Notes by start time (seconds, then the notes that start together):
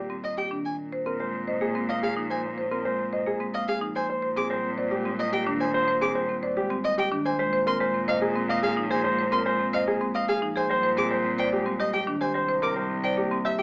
Already playing: A#2 G4
0.10 G3 C4
0.24 D#5
0.37 G4 G5
0.51 D#3 D4
0.65 G#5
0.79 A#2
0.93 C5
1.06 C4 A#4
1.20 G#3 C5
1.34 C4
1.48 C5 D#5
1.61 A#3 G#4
1.75 G#3 C4
1.89 D#5 F5
2.03 G#4 F5
2.16 F3 D#4
2.30 C5 G#5
2.58 C5
2.71 C4 A#4
2.85 G#3 C5
2.99 C4
3.13 C5 D#5
3.26 A#3 G#4
3.40 G#3 C4
3.54 D#5 F5
3.68 G#4 F5
3.81 F3 D#4
3.95 C5 G#5
4.09 A#2 C5
4.22 C5
4.36 C4 G#4 D6
4.50 G3 C5
4.64 C4
4.77 C5 D5
4.91 G#3 G4
5.05 G3 C4
5.19 D#5
5.33 G4 G5
5.47 D#3 D4
5.60 C5 G#5
5.74 C5
5.88 C5
6.01 C4 G#4 D6
6.15 G3 C5
6.29 C4
6.43 C5 D5
6.57 G#3 G4
6.70 G3 C4
6.84 D#5
6.98 G4 G5
7.12 D#3 D4
7.25 C5 G#5
7.39 A#2 G#3 C5
7.53 C5
7.67 C4 A#4 C6
7.81 G#3 C5
7.94 C4
8.08 C5 D#5 F5
8.22 A#3 G#4
8.35 G#3 C4
8.49 D#5 F5
8.63 G#4 F5
8.77 F3 D#4
8.90 G#4 C5 G#5
9.04 G#3 C5
9.19 C5
9.32 C4 A#4 C6
9.46 G#3 C5
9.60 C4
9.73 C5 D#5 F5
9.87 A#3 G#4
10.01 G#3 C4
10.15 D#5 F5
10.28 G#4 F5
10.42 F3 D#4
10.56 G#4 C5 G#5
10.70 A#2 G3 C5
10.83 C5
10.97 C4 G#4 D6
11.11 G3 C5
11.24 C4
11.38 C5 D5 G5
11.52 G#3 G4
11.66 G3 C4
11.80 G4 D#5
11.93 G4 G5
12.07 D#3 D4
12.21 G4 C5 G#5
12.35 C2 G3 C5
12.49 C5
12.62 C4 A#4 D6
12.76 G3 C5
12.90 C4
13.04 C5 D5 G5
13.17 A#3 G4
13.31 G3 C4
13.45 G4 E5
13.59 G4 G5